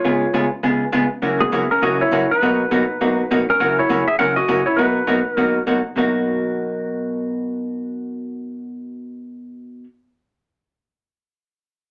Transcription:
Already playing: electric slide guitar F4 C#5
0.04 hollow-body jazz guitar C#3 G#3 B3 F4 G#4
0.34 hollow-body jazz guitar C#3 G#3 B3 F4 G#4
0.63 hollow-body jazz guitar C#3 G#3 B3 F4 G#4
0.92 hollow-body jazz guitar C#3 G#3 B3 F4 G#4
1.22 hollow-body jazz guitar F#2 C#3 E3 A#3 C#4 F#4
1.41 electric slide guitar B3 G#4
1.52 hollow-body jazz guitar F#2 C#3 E3 A#3 C#4 F#4
1.71 electric slide guitar C#4 A#4
1.82 hollow-body jazz guitar F#2 C#3 E3 A#3 C#4 F#4, electric slide guitar F#4 D#5
2.01 electric slide guitar E4 C#5
2.11 hollow-body jazz guitar F#2 C#3 E3 A#3 C#4 F#4
2.31 electric slide guitar D#4 B4
2.42 hollow-body jazz guitar B2 F#3 A#3 D#4 F#4
2.71 hollow-body jazz guitar B2 F#3 A#3 D#4 F#4
3.01 hollow-body jazz guitar B2 F#3 A#3 D#4 F#4
3.31 hollow-body jazz guitar B2 F#3 A#3 D#4 F#4
3.50 electric slide guitar C#4 A#4
3.60 hollow-body jazz guitar F#2 C#3 E3 A#3 C#4 F#4
3.79 electric slide guitar E4 C#5
3.89 hollow-body jazz guitar F#2 C#3 E3 A#3 C#4 F#4
4.07 electric slide guitar G#4 E5
4.19 hollow-body jazz guitar F#2 C#3 E3 A#3 C#4 F#4, electric slide guitar A#4 F#5
4.36 electric slide guitar F#4 D#5
4.48 hollow-body jazz guitar F#2 C#3 E3 A#3 C#4 F#4
4.66 electric slide guitar E4 C#5
4.77 hollow-body jazz guitar B2 F#3 A#3 D#4 F#4, electric slide guitar D#4 B4
5.07 hollow-body jazz guitar B2 F#3 A#3 D#4 F#4
5.35 hollow-body jazz guitar B2 F#3 A#3 D#4 F#4, electric slide guitar A#4
5.67 hollow-body jazz guitar B2 F#3 A#3 D#4 F#4
5.96 hollow-body jazz guitar B2 F#3 A#3 D#4 F#4

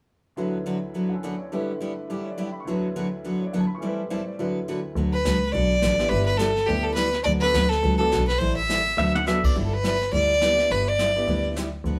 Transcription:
0.36 upright piano D2 D3 F#3 E4 B4, steel-string acoustic guitar D3 F#3 B3 F#4 B4
0.66 steel-string acoustic guitar D3 F#3 B3 F#4 B4
0.94 steel-string acoustic guitar D3 F#3 B3 F#4 B4
1.09 upright piano D3 C#4 F#5
1.13 upright piano A4
1.23 steel-string acoustic guitar D3 F#3 B3 F#4 B4, upright piano D5
1.39 upright piano C#5
1.52 upright piano G2 D3 A3 E4 B4, steel-string acoustic guitar G3 B3 E4 G4
1.81 steel-string acoustic guitar G3 B3 E4 G4
2.08 upright piano D3 E3 D4 G4, steel-string acoustic guitar G3 B3 E4 G4
2.24 upright piano C#5
2.31 upright piano D5
2.38 steel-string acoustic guitar G3 B3 E4 G4, upright piano E5
2.45 upright piano G5
2.53 upright piano B5
2.60 upright piano C#6
2.65 upright piano D2 D3 F#3 E4, steel-string acoustic guitar D3 F#3 B3 F#4 B4
2.70 upright piano B4
2.96 steel-string acoustic guitar D3 F#3 B3 F#4 B4
3.24 steel-string acoustic guitar D3 F#3 B3 F#4 B4
3.39 upright piano C#5
3.46 upright piano D5
3.53 steel-string acoustic guitar D3 F#3 B3 F#4 B4, upright piano F#5
3.60 upright piano A5
3.67 upright piano B5
3.75 upright piano A2 E3 C#6
3.81 steel-string acoustic guitar A2 E3 G3 C4 E4 A4, upright piano G3 C4
3.87 upright piano B4
4.10 steel-string acoustic guitar A2 E3 G3 C4 E4 A4, upright piano C5
4.25 upright piano D5
4.38 upright piano D2 D3 F#3 E4 B4, steel-string acoustic guitar D3 F#3 B3 F#4 B4
4.68 steel-string acoustic guitar D3 F#3 B3 F#4 B4
4.96 double bass D2, steel-string acoustic guitar D3 F#3 B3 F#4 B4, brush sweep
5.13 fiddle B4
5.25 double bass C#2, steel-string acoustic guitar D3 F#3 B3 F#4 B4, snare, hi-hat pedal
5.47 fiddle B4
5.52 double bass B1, steel-string acoustic guitar D3 F#3 B3 F#4 B4, fiddle D5, brush sweep
5.82 double bass A1, steel-string acoustic guitar D3 F#3 B3 F#4 B4, snare, hi-hat pedal
5.99 upright piano B3 D4 E4 G4, snare
6.09 double bass G1, steel-string acoustic guitar G3 B3 E4 G4, fiddle B4, brush sweep
6.26 fiddle B4
6.37 steel-string acoustic guitar G3 B3 E4 G4, fiddle A4, snare, hi-hat pedal
6.56 snare
6.66 double bass D2, steel-string acoustic guitar G3 B3 E4 G4, upright piano B3 D4 E4 G4, fiddle G4, brush sweep
6.83 fiddle A4
6.94 steel-string acoustic guitar G3 B3 E4 G4, fiddle B4, snare, hi-hat pedal
7.13 snare
7.24 double bass D2, steel-string acoustic guitar D3 F#3 B3 F#4 B4, fiddle D5, brush sweep
7.41 upright piano B3 D4 F#4 A4, fiddle B4
7.54 double bass D2, steel-string acoustic guitar D3 F#3 B3 F#4 B4, snare, hi-hat pedal
7.69 fiddle A4, snare
7.83 double bass C#2, steel-string acoustic guitar D3 F#3 B3 F#4 B4, brush sweep
7.98 upright piano B3 D4 F#4 A4, fiddle A4
8.12 double bass B1, steel-string acoustic guitar D3 F#3 B3 F#4 B4, snare, hi-hat pedal
8.28 fiddle B4, snare
8.38 double bass A1, steel-string acoustic guitar E3 G3 C4 E4 A4, fiddle C5, brush sweep
8.56 fiddle E5
8.69 steel-string acoustic guitar E3 G3 C4 E4 A4, snare, hi-hat pedal
8.97 double bass D2, steel-string acoustic guitar D3 F#3 B3 F#4 B4, pedal steel guitar E5, high tom
9.15 pedal steel guitar F#5, high tom
9.26 steel-string acoustic guitar D3 F#3 B3 F#4 B4, upright piano B3 D4 F#4 A4, pedal steel guitar E5, snare, hi-hat pedal
9.44 pedal steel guitar D5, kick, crash
9.55 double bass G1, steel-string acoustic guitar G3 B3 E4 G4, brush sweep
9.64 fiddle A4
9.73 fiddle B4
9.84 steel-string acoustic guitar G3 B3 E4 G4, snare, hi-hat pedal
10.01 snare
10.12 double bass D2, steel-string acoustic guitar G3 B3 E4 G4, fiddle D5, brush sweep
10.41 steel-string acoustic guitar G3 B3 E4 G4, upright piano B3 D4 E4 G4, snare, hi-hat pedal
10.59 snare
10.71 double bass G1, steel-string acoustic guitar G3 B3 E4 G4, fiddle B4, brush sweep
10.88 fiddle D5
10.99 steel-string acoustic guitar G3 B3 E4 G4, snare, hi-hat pedal
11.16 upright piano B3 D4 E4 G4
11.28 double bass D2, steel-string acoustic guitar G3 B3 E4 G4, brush sweep
11.56 steel-string acoustic guitar G3 B3 E4 G4, snare, hi-hat pedal
11.84 double bass D2, steel-string acoustic guitar D3 F#3 B3 F#4 B4, brush sweep

